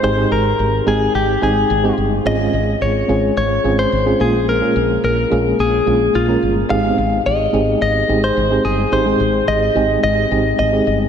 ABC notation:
X:1
M:4/4
L:1/16
Q:1/4=108
K:Ab
V:1 name="Clean electric guitar"
c2 B4 A2 G2 A4 z2 | e4 d4 d3 c3 A2 | B4 B4 A4 F3 z | f4 e4 e3 c3 A2 |
c4 e4 e4 e3 z |]
V:2 name="FM electric piano"
[A,CEGA] [A,CEGA]4 z [A,CEGA]3 z [A,CEAg]2 z [A,CEGA]2 z | [A,CDFA] [A,CDFA]4 z [A,CDFA]3 z [A,CDFA]2 z [A,CDFA] [A,B,DFA]2 | z [A,B,DFA]4 z [A,B,DFA]3 z [A,B,DFA]2 z [A,B,DFB]2 z | [A,CEGA] [A,_C=CEGA]4 z [A,CEGA]3 z [A,CEGA]2 z [A,CEGA]2 z |
[A,CEGA] [A,CEGA]4 z [A,CEGA]3 z [A,CEGA]2 z [A,CEGA]2 z |]
V:3 name="FM electric piano" clef=bass
A,,6 z8 z2 | A,,6 z8 B,,2- | B,,4 z12 | A,,6 z8 z2 |
A,,6 z8 z2 |]
V:4 name="Fretless electric bass" clef=bass
A,,,2 A,,,2 A,,,2 A,,,2 A,,,2 A,,,2 A,,,2 G,,,2 | A,,,2 A,,,2 A,,,2 A,,,2 A,,,2 A,,,2 A,,,2 B,,,2- | B,,,2 B,,,2 B,,,2 B,,,2 B,,,2 B,,,2 B,,,2 G,,,2 | A,,,2 A,,,2 A,,,2 A,,,2 A,,,2 A,,,2 A,,,2 G,,,2 |
A,,,2 A,,,2 A,,,2 A,,,2 A,,,2 A,,,2 A,,,2 G,,,2 |]